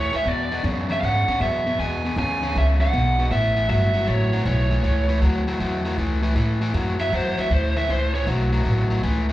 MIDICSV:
0, 0, Header, 1, 5, 480
1, 0, Start_track
1, 0, Key_signature, 3, "major"
1, 0, Tempo, 381437
1, 326, Time_signature, 4, 2, 24, 8
1, 11737, End_track
2, 0, Start_track
2, 0, Title_t, "Lead electric guitar"
2, 0, Program_c, 0, 29
2, 0, Note_on_c, 0, 73, 75
2, 181, Note_off_c, 0, 73, 0
2, 200, Note_on_c, 0, 76, 78
2, 349, Note_off_c, 0, 76, 0
2, 351, Note_on_c, 0, 74, 84
2, 786, Note_off_c, 0, 74, 0
2, 1159, Note_on_c, 0, 76, 83
2, 1238, Note_off_c, 0, 76, 0
2, 1268, Note_on_c, 0, 77, 70
2, 1307, Note_off_c, 0, 77, 0
2, 1320, Note_on_c, 0, 78, 89
2, 1776, Note_off_c, 0, 78, 0
2, 1782, Note_on_c, 0, 76, 87
2, 2221, Note_off_c, 0, 76, 0
2, 2261, Note_on_c, 0, 80, 92
2, 2700, Note_off_c, 0, 80, 0
2, 2756, Note_on_c, 0, 80, 95
2, 3235, Note_off_c, 0, 80, 0
2, 3244, Note_on_c, 0, 76, 89
2, 3325, Note_off_c, 0, 76, 0
2, 3538, Note_on_c, 0, 78, 93
2, 4168, Note_off_c, 0, 78, 0
2, 4173, Note_on_c, 0, 76, 85
2, 4641, Note_off_c, 0, 76, 0
2, 4656, Note_on_c, 0, 76, 82
2, 5134, Note_on_c, 0, 73, 83
2, 5145, Note_off_c, 0, 76, 0
2, 5576, Note_off_c, 0, 73, 0
2, 5615, Note_on_c, 0, 73, 68
2, 6520, Note_off_c, 0, 73, 0
2, 8823, Note_on_c, 0, 76, 88
2, 8972, Note_off_c, 0, 76, 0
2, 8995, Note_on_c, 0, 72, 85
2, 9289, Note_off_c, 0, 72, 0
2, 9315, Note_on_c, 0, 76, 77
2, 9458, Note_off_c, 0, 76, 0
2, 9469, Note_on_c, 0, 72, 85
2, 9766, Note_off_c, 0, 72, 0
2, 9775, Note_on_c, 0, 76, 91
2, 9928, Note_off_c, 0, 76, 0
2, 9948, Note_on_c, 0, 72, 84
2, 10240, Note_off_c, 0, 72, 0
2, 10246, Note_on_c, 0, 73, 93
2, 10403, Note_off_c, 0, 73, 0
2, 11737, End_track
3, 0, Start_track
3, 0, Title_t, "Overdriven electric guitar"
3, 0, Program_c, 1, 29
3, 0, Note_on_c, 1, 45, 75
3, 0, Note_on_c, 1, 52, 79
3, 128, Note_off_c, 1, 45, 0
3, 131, Note_off_c, 1, 52, 0
3, 157, Note_on_c, 1, 45, 65
3, 166, Note_on_c, 1, 52, 66
3, 306, Note_off_c, 1, 45, 0
3, 311, Note_off_c, 1, 52, 0
3, 320, Note_on_c, 1, 40, 76
3, 324, Note_on_c, 1, 47, 85
3, 608, Note_off_c, 1, 40, 0
3, 610, Note_off_c, 1, 47, 0
3, 645, Note_on_c, 1, 40, 68
3, 650, Note_on_c, 1, 47, 83
3, 781, Note_off_c, 1, 40, 0
3, 793, Note_off_c, 1, 47, 0
3, 796, Note_on_c, 1, 40, 78
3, 805, Note_on_c, 1, 49, 84
3, 1086, Note_off_c, 1, 40, 0
3, 1090, Note_off_c, 1, 49, 0
3, 1114, Note_on_c, 1, 40, 63
3, 1119, Note_on_c, 1, 49, 78
3, 1265, Note_off_c, 1, 40, 0
3, 1268, Note_off_c, 1, 49, 0
3, 1291, Note_on_c, 1, 40, 81
3, 1297, Note_on_c, 1, 49, 80
3, 1574, Note_off_c, 1, 40, 0
3, 1577, Note_off_c, 1, 49, 0
3, 1605, Note_on_c, 1, 40, 62
3, 1609, Note_on_c, 1, 49, 78
3, 1750, Note_off_c, 1, 40, 0
3, 1752, Note_off_c, 1, 49, 0
3, 1771, Note_on_c, 1, 40, 71
3, 1778, Note_on_c, 1, 47, 72
3, 2054, Note_off_c, 1, 40, 0
3, 2057, Note_off_c, 1, 47, 0
3, 2092, Note_on_c, 1, 40, 71
3, 2096, Note_on_c, 1, 47, 76
3, 2234, Note_off_c, 1, 40, 0
3, 2236, Note_off_c, 1, 47, 0
3, 2262, Note_on_c, 1, 40, 82
3, 2264, Note_on_c, 1, 47, 92
3, 2539, Note_off_c, 1, 40, 0
3, 2540, Note_off_c, 1, 47, 0
3, 2575, Note_on_c, 1, 40, 74
3, 2581, Note_on_c, 1, 47, 78
3, 2716, Note_off_c, 1, 40, 0
3, 2719, Note_off_c, 1, 47, 0
3, 2736, Note_on_c, 1, 40, 77
3, 2739, Note_on_c, 1, 49, 87
3, 3016, Note_off_c, 1, 40, 0
3, 3017, Note_off_c, 1, 49, 0
3, 3045, Note_on_c, 1, 40, 67
3, 3054, Note_on_c, 1, 49, 80
3, 3190, Note_off_c, 1, 40, 0
3, 3195, Note_off_c, 1, 49, 0
3, 3209, Note_on_c, 1, 40, 69
3, 3214, Note_on_c, 1, 49, 87
3, 3492, Note_off_c, 1, 40, 0
3, 3495, Note_off_c, 1, 49, 0
3, 3519, Note_on_c, 1, 40, 67
3, 3526, Note_on_c, 1, 49, 77
3, 3667, Note_off_c, 1, 40, 0
3, 3671, Note_off_c, 1, 49, 0
3, 3683, Note_on_c, 1, 40, 70
3, 3692, Note_on_c, 1, 47, 85
3, 3969, Note_off_c, 1, 40, 0
3, 3974, Note_off_c, 1, 47, 0
3, 4012, Note_on_c, 1, 40, 65
3, 4019, Note_on_c, 1, 47, 77
3, 4154, Note_off_c, 1, 40, 0
3, 4157, Note_off_c, 1, 47, 0
3, 4168, Note_on_c, 1, 45, 81
3, 4172, Note_on_c, 1, 52, 86
3, 4451, Note_off_c, 1, 45, 0
3, 4453, Note_off_c, 1, 52, 0
3, 4476, Note_on_c, 1, 45, 73
3, 4484, Note_on_c, 1, 52, 78
3, 4622, Note_off_c, 1, 45, 0
3, 4630, Note_off_c, 1, 52, 0
3, 4637, Note_on_c, 1, 45, 74
3, 4644, Note_on_c, 1, 54, 82
3, 4926, Note_off_c, 1, 45, 0
3, 4929, Note_off_c, 1, 54, 0
3, 4952, Note_on_c, 1, 45, 70
3, 4956, Note_on_c, 1, 54, 75
3, 5104, Note_off_c, 1, 45, 0
3, 5106, Note_off_c, 1, 54, 0
3, 5122, Note_on_c, 1, 45, 73
3, 5125, Note_on_c, 1, 54, 83
3, 5409, Note_off_c, 1, 45, 0
3, 5410, Note_off_c, 1, 54, 0
3, 5441, Note_on_c, 1, 45, 70
3, 5449, Note_on_c, 1, 54, 73
3, 5588, Note_off_c, 1, 45, 0
3, 5592, Note_off_c, 1, 54, 0
3, 5602, Note_on_c, 1, 45, 66
3, 5609, Note_on_c, 1, 52, 77
3, 5889, Note_off_c, 1, 45, 0
3, 5892, Note_off_c, 1, 52, 0
3, 5916, Note_on_c, 1, 45, 69
3, 5924, Note_on_c, 1, 52, 67
3, 6066, Note_off_c, 1, 45, 0
3, 6070, Note_off_c, 1, 52, 0
3, 6081, Note_on_c, 1, 45, 73
3, 6089, Note_on_c, 1, 52, 86
3, 6368, Note_off_c, 1, 45, 0
3, 6372, Note_off_c, 1, 52, 0
3, 6396, Note_on_c, 1, 45, 76
3, 6406, Note_on_c, 1, 52, 85
3, 6546, Note_off_c, 1, 45, 0
3, 6551, Note_off_c, 1, 52, 0
3, 6562, Note_on_c, 1, 45, 74
3, 6566, Note_on_c, 1, 54, 88
3, 6849, Note_off_c, 1, 45, 0
3, 6851, Note_off_c, 1, 54, 0
3, 6885, Note_on_c, 1, 45, 67
3, 6893, Note_on_c, 1, 54, 71
3, 7027, Note_off_c, 1, 45, 0
3, 7034, Note_off_c, 1, 54, 0
3, 7042, Note_on_c, 1, 45, 74
3, 7051, Note_on_c, 1, 54, 75
3, 7329, Note_off_c, 1, 45, 0
3, 7333, Note_off_c, 1, 54, 0
3, 7358, Note_on_c, 1, 45, 67
3, 7367, Note_on_c, 1, 54, 75
3, 7507, Note_off_c, 1, 45, 0
3, 7512, Note_off_c, 1, 54, 0
3, 7525, Note_on_c, 1, 45, 64
3, 7529, Note_on_c, 1, 52, 80
3, 7811, Note_off_c, 1, 45, 0
3, 7813, Note_off_c, 1, 52, 0
3, 7833, Note_on_c, 1, 45, 71
3, 7839, Note_on_c, 1, 52, 73
3, 7977, Note_off_c, 1, 45, 0
3, 7984, Note_off_c, 1, 52, 0
3, 7992, Note_on_c, 1, 45, 79
3, 7999, Note_on_c, 1, 52, 89
3, 8284, Note_off_c, 1, 45, 0
3, 8288, Note_off_c, 1, 52, 0
3, 8318, Note_on_c, 1, 45, 65
3, 8324, Note_on_c, 1, 52, 80
3, 8467, Note_off_c, 1, 45, 0
3, 8471, Note_off_c, 1, 52, 0
3, 8481, Note_on_c, 1, 45, 79
3, 8488, Note_on_c, 1, 54, 83
3, 8769, Note_off_c, 1, 45, 0
3, 8772, Note_off_c, 1, 54, 0
3, 8793, Note_on_c, 1, 45, 71
3, 8800, Note_on_c, 1, 54, 77
3, 8945, Note_off_c, 1, 45, 0
3, 8949, Note_off_c, 1, 54, 0
3, 8962, Note_on_c, 1, 45, 80
3, 8965, Note_on_c, 1, 54, 81
3, 9250, Note_off_c, 1, 45, 0
3, 9251, Note_off_c, 1, 54, 0
3, 9280, Note_on_c, 1, 45, 64
3, 9287, Note_on_c, 1, 54, 75
3, 9429, Note_off_c, 1, 45, 0
3, 9433, Note_off_c, 1, 54, 0
3, 9445, Note_on_c, 1, 45, 74
3, 9456, Note_on_c, 1, 52, 75
3, 9731, Note_off_c, 1, 45, 0
3, 9737, Note_off_c, 1, 52, 0
3, 9768, Note_on_c, 1, 45, 67
3, 9773, Note_on_c, 1, 52, 68
3, 9913, Note_off_c, 1, 45, 0
3, 9915, Note_off_c, 1, 52, 0
3, 9930, Note_on_c, 1, 45, 81
3, 9936, Note_on_c, 1, 52, 85
3, 10214, Note_off_c, 1, 45, 0
3, 10217, Note_off_c, 1, 52, 0
3, 10247, Note_on_c, 1, 45, 67
3, 10255, Note_on_c, 1, 52, 75
3, 10393, Note_off_c, 1, 45, 0
3, 10397, Note_off_c, 1, 52, 0
3, 10405, Note_on_c, 1, 45, 74
3, 10416, Note_on_c, 1, 54, 86
3, 10692, Note_off_c, 1, 45, 0
3, 10697, Note_off_c, 1, 54, 0
3, 10726, Note_on_c, 1, 45, 77
3, 10731, Note_on_c, 1, 54, 74
3, 10867, Note_off_c, 1, 45, 0
3, 10872, Note_off_c, 1, 54, 0
3, 10882, Note_on_c, 1, 45, 78
3, 10887, Note_on_c, 1, 54, 84
3, 11170, Note_off_c, 1, 45, 0
3, 11172, Note_off_c, 1, 54, 0
3, 11203, Note_on_c, 1, 45, 69
3, 11207, Note_on_c, 1, 54, 73
3, 11346, Note_off_c, 1, 45, 0
3, 11352, Note_off_c, 1, 54, 0
3, 11361, Note_on_c, 1, 45, 74
3, 11368, Note_on_c, 1, 52, 83
3, 11650, Note_off_c, 1, 45, 0
3, 11653, Note_off_c, 1, 52, 0
3, 11689, Note_on_c, 1, 45, 62
3, 11693, Note_on_c, 1, 52, 72
3, 11737, Note_off_c, 1, 45, 0
3, 11737, Note_off_c, 1, 52, 0
3, 11737, End_track
4, 0, Start_track
4, 0, Title_t, "Upright bass"
4, 0, Program_c, 2, 32
4, 0, Note_on_c, 2, 38, 82
4, 140, Note_off_c, 2, 38, 0
4, 321, Note_on_c, 2, 40, 77
4, 789, Note_off_c, 2, 40, 0
4, 803, Note_on_c, 2, 42, 88
4, 1270, Note_off_c, 2, 42, 0
4, 1290, Note_on_c, 2, 44, 82
4, 1583, Note_off_c, 2, 44, 0
4, 1763, Note_on_c, 2, 42, 84
4, 2230, Note_off_c, 2, 42, 0
4, 2244, Note_on_c, 2, 40, 76
4, 2710, Note_off_c, 2, 40, 0
4, 2722, Note_on_c, 2, 38, 89
4, 3189, Note_off_c, 2, 38, 0
4, 3216, Note_on_c, 2, 37, 83
4, 3676, Note_off_c, 2, 37, 0
4, 3693, Note_on_c, 2, 35, 86
4, 4155, Note_off_c, 2, 35, 0
4, 4163, Note_on_c, 2, 33, 80
4, 4629, Note_off_c, 2, 33, 0
4, 4640, Note_on_c, 2, 31, 91
4, 5108, Note_off_c, 2, 31, 0
4, 5123, Note_on_c, 2, 33, 82
4, 5589, Note_off_c, 2, 33, 0
4, 5605, Note_on_c, 2, 35, 89
4, 6071, Note_off_c, 2, 35, 0
4, 6089, Note_on_c, 2, 37, 84
4, 6553, Note_off_c, 2, 37, 0
4, 6566, Note_on_c, 2, 38, 82
4, 7031, Note_off_c, 2, 38, 0
4, 7048, Note_on_c, 2, 40, 80
4, 7513, Note_off_c, 2, 40, 0
4, 7523, Note_on_c, 2, 37, 83
4, 7990, Note_off_c, 2, 37, 0
4, 7999, Note_on_c, 2, 45, 78
4, 8469, Note_off_c, 2, 45, 0
4, 8482, Note_on_c, 2, 42, 89
4, 8950, Note_off_c, 2, 42, 0
4, 8968, Note_on_c, 2, 40, 80
4, 9262, Note_off_c, 2, 40, 0
4, 9439, Note_on_c, 2, 38, 84
4, 9909, Note_off_c, 2, 38, 0
4, 9917, Note_on_c, 2, 37, 77
4, 10388, Note_off_c, 2, 37, 0
4, 10402, Note_on_c, 2, 35, 88
4, 10871, Note_off_c, 2, 35, 0
4, 10881, Note_on_c, 2, 33, 85
4, 11350, Note_off_c, 2, 33, 0
4, 11367, Note_on_c, 2, 37, 83
4, 11737, Note_off_c, 2, 37, 0
4, 11737, End_track
5, 0, Start_track
5, 0, Title_t, "Muted upright bass strokes"
5, 165, Note_on_c, 9, 29, 35
5, 290, Note_off_c, 9, 29, 0
5, 1609, Note_on_c, 9, 29, 37
5, 1735, Note_off_c, 9, 29, 0
5, 9291, Note_on_c, 9, 29, 38
5, 9417, Note_off_c, 9, 29, 0
5, 11737, End_track
0, 0, End_of_file